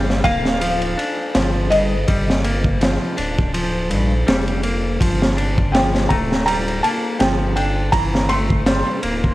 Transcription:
Already playing: sub bass G1, clean electric guitar G3
0.10 snare
0.24 sub bass D1, clean electric guitar A#3, felt piano F5, kick, ride
0.45 snare
0.61 clean electric guitar F3, ride
0.82 ride
0.98 clean electric guitar D4, ride
1.34 sub bass G1, clean electric guitar F3, snare, ride
1.70 clean electric guitar G2, felt piano D#5, ride
2.08 sub bass G1, clean electric guitar G3, kick, ride
2.30 snare
2.44 clean electric guitar A#3, ride
2.64 kick
2.81 clean electric guitar F3, snare, ride
3.17 sub bass D1, clean electric guitar D4, ride
3.38 kick
3.54 clean electric guitar F3, ride
3.90 sub bass A#1, clean electric guitar G2, ride
4.27 sub bass F1, clean electric guitar G3, snare, ride
4.48 ride
4.63 clean electric guitar A#3, ride
5.00 sub bass G1, clean electric guitar F3, kick, ride
5.22 snare
5.37 clean electric guitar D4, ride
5.58 kick
5.72 clean electric guitar F3, felt piano G5, snare, ride
5.95 snare
6.09 sub bass D1, clean electric guitar A3, felt piano A#5, kick, ride
6.32 snare
6.46 clean electric guitar G3, felt piano A#5, ride
6.68 ride
6.83 clean electric guitar A#3, felt piano A5, ride
7.19 sub bass G1, clean electric guitar F3, felt piano G5, snare, ride
7.56 clean electric guitar D4, felt piano G5, ride
7.92 sub bass G1, clean electric guitar E3, felt piano A#5, kick, ride
8.15 snare
8.29 clean electric guitar A3, felt piano C6, ride
8.50 kick
8.66 clean electric guitar G3, snare, ride
9.03 sub bass D1, clean electric guitar A#3, ride
9.24 kick

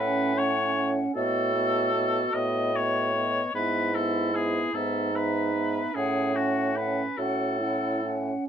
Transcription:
Already playing: bassoon A2, french horn C#4, clarinet C#4, oboe B4
0.00 flute F#5
0.37 french horn C#4, oboe C#5, flute F#5
0.76 french horn C#4, flute F#5
1.15 bassoon A2, french horn B3, clarinet F#4, oboe A4, flute D#5
1.55 french horn B3, flute D#5
1.95 french horn B3, flute D#5
2.34 bassoon A2, french horn B3, oboe D#5, flute D#5
2.75 french horn B3, oboe C#5, flute D#5
3.15 french horn B3, flute D#5
3.55 bassoon G#2, french horn B3, clarinet E4, oboe B4, flute E5
3.95 french horn B3, oboe A4, flute E5
4.35 french horn B3, oboe G#4, flute E5
4.74 bassoon G#2, french horn B3, clarinet D#4, oboe A4, flute E5
5.14 french horn B3, oboe B4, flute E5
5.55 french horn B3, flute E5
5.94 bassoon A2, clarinet C#4, french horn C#4, oboe G#4, flute F#5
6.36 french horn C#4, oboe F#4, flute F#5
6.76 french horn C#4, oboe B4, flute F#5
7.17 bassoon A2, french horn C#4, clarinet F#4, oboe A4, flute F#5
7.61 french horn C#4, clarinet E4, flute F#5
8.04 french horn C#4, clarinet C#4, flute F#5

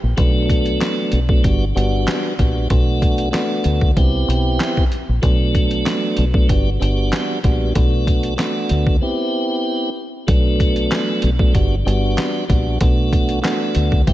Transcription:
0.03 fingered electric bass A#1
0.17 fingered electric bass B1, tonewheel organ F#3 A3 B3 D4, kick, closed hi-hat
0.50 kick, closed hi-hat
0.66 closed hi-hat
0.81 snare, clap, closed hi-hat
1.12 fingered electric bass B1, closed hi-hat
1.29 tonewheel organ F#3 A3 B3 D4, kick
1.43 fingered electric bass G1, tonewheel organ G3 B3 D4 F#4, kick, closed hi-hat
1.75 fingered electric bass G1, tonewheel organ G3 B3 D4 F#4, closed hi-hat
2.08 snare, clap, closed hi-hat
2.38 fingered electric bass A#1, tonewheel organ G3 B3 D4 F#4, kick, closed hi-hat
2.70 fingered electric bass B1, tonewheel organ A3 B3 D4 F#4, kick, closed hi-hat
3.02 kick, closed hi-hat
3.18 closed hi-hat
3.31 tonewheel organ A3 B3 D4 F#4, snare, clap
3.35 closed hi-hat
3.64 fingered electric bass D2, closed hi-hat
3.81 kick
3.96 fingered electric bass C2, tonewheel organ B3 C4 E4 G4, kick, closed hi-hat
4.28 fingered electric bass B1, closed hi-hat
4.60 snare, clap, closed hi-hat
4.77 kick
4.92 closed hi-hat
5.09 fingered electric bass A#1
5.22 fingered electric bass B1, tonewheel organ F#3 A3 B3 D4, kick, closed hi-hat
5.55 kick, closed hi-hat
5.71 closed hi-hat
5.86 snare, clap, closed hi-hat
6.17 fingered electric bass B1, closed hi-hat
6.34 tonewheel organ F#3 A3 B3 D4, kick
6.48 fingered electric bass G1, tonewheel organ G3 B3 D4 F#4, kick, closed hi-hat
6.80 fingered electric bass G1, tonewheel organ G3 B3 D4 F#4, closed hi-hat
7.13 snare, clap, closed hi-hat
7.43 fingered electric bass A#1, tonewheel organ G3 B3 D4 F#4, kick, closed hi-hat
7.75 fingered electric bass B1, tonewheel organ A3 B3 D4 F#4, kick, closed hi-hat
8.07 kick, closed hi-hat
8.23 closed hi-hat
8.36 tonewheel organ A3 B3 D4 F#4, snare, clap, closed hi-hat
8.69 fingered electric bass D2, closed hi-hat
8.87 kick
9.01 tonewheel organ B3 C4 E4 G4
10.27 fingered electric bass B1, tonewheel organ F#3 A3 B3 D4, kick, closed hi-hat
10.60 kick, closed hi-hat
10.76 closed hi-hat
10.92 snare, clap, closed hi-hat
11.22 fingered electric bass B1, closed hi-hat
11.39 tonewheel organ F#3 A3 B3 D4, kick
11.54 fingered electric bass G1, tonewheel organ G3 B3 D4 F#4, kick, closed hi-hat
11.85 fingered electric bass G1, tonewheel organ G3 B3 D4 F#4, closed hi-hat
12.18 snare, clap, closed hi-hat
12.48 fingered electric bass A#1, tonewheel organ G3 B3 D4 F#4, kick, closed hi-hat
12.80 fingered electric bass B1, tonewheel organ A3 B3 D4 F#4, kick, closed hi-hat
13.13 kick, closed hi-hat
13.29 closed hi-hat
13.42 tonewheel organ A3 B3 D4 F#4, snare, clap, closed hi-hat
13.75 fingered electric bass D2, closed hi-hat
13.92 kick
14.07 fingered electric bass C2, tonewheel organ B3 C4 E4 G4, kick, closed hi-hat

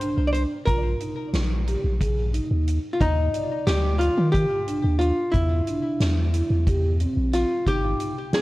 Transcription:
Already playing: hollow-body jazz guitar C5
0.00 vibraphone D4, closed hi-hat
0.17 sub bass C2
0.27 hollow-body jazz guitar D5
0.33 hollow-body jazz guitar C5, closed hi-hat
0.66 sub bass A#1, vibraphone F4, hollow-body jazz guitar A#4, kick, closed hi-hat
1.00 vibraphone D#4, closed hi-hat
1.34 sub bass A#1, snare, closed hi-hat
1.67 vibraphone G4, closed hi-hat
1.84 sub bass A#1
2.00 vibraphone G#4, kick, closed hi-hat
2.33 vibraphone D#4, closed hi-hat
2.51 sub bass D#2
2.67 closed hi-hat
2.93 hollow-body jazz guitar F4
3.00 sub bass D#2, vibraphone D#4, hollow-body jazz guitar D#4, kick, closed hi-hat
3.33 vibraphone D5, closed hi-hat
3.67 sub bass D2, hollow-body jazz guitar G4, snare, closed hi-hat
3.99 hollow-body jazz guitar F4, vibraphone F4, closed hi-hat
4.17 sub bass D#3
4.32 hollow-body jazz guitar G4, vibraphone G4, kick, closed hi-hat
4.67 vibraphone D4, closed hi-hat
4.84 sub bass D#2
4.99 hollow-body jazz guitar F4, closed hi-hat
5.32 sub bass E2, hollow-body jazz guitar E4, vibraphone E4, kick, closed hi-hat
5.67 vibraphone D4, closed hi-hat
6.00 sub bass E2, snare, closed hi-hat
6.34 vibraphone E4, closed hi-hat
6.50 sub bass E2
6.67 vibraphone G4, kick, closed hi-hat
7.00 vibraphone C4, closed hi-hat
7.17 sub bass A#1
7.33 hollow-body jazz guitar F4, snare, closed hi-hat
7.66 sub bass G#1, vibraphone D#4, hollow-body jazz guitar G4, kick, closed hi-hat
8.00 closed hi-hat
8.33 vibraphone C4, hollow-body jazz guitar G#4, snare, closed hi-hat

